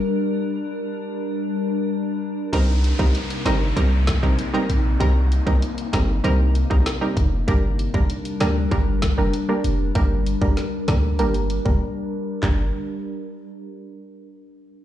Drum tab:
HH |----------------|x-x-xxx-x-x-x-x-|x-x-xxx-x-x-x-x-|x-x-xxx-x-x-x-x-|
CP |----------------|----------------|----------------|----------------|
SD |----------------|------o---o-----|------o-----o---|------o---o-----|
BD |----------------|o--o----o-o-----|o--o--o----o--o-|o--o----o-o-----|

HH |x-x-x-x-xxx-----|----------------|
CP |----------------|x---------------|
SD |----o-o---------|----------------|
BD |o--o--o----o----|o---------------|